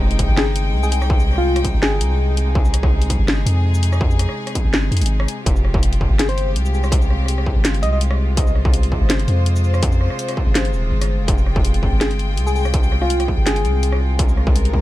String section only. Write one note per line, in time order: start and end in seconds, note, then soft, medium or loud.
0.00 5.42 C3 medium
0.00 5.42 G#3 medium
0.00 5.42 D#4 medium
0.00 2.54 G5 medium
2.55 5.45 G#4 medium
5.46 14.81 C3 medium
5.46 14.81 G#3 medium
5.46 14.81 F4 medium
5.46 8.36 G4 medium
8.38 11.27 C5 medium
11.28 14.18 G5 medium
14.19 14.81 A#4 medium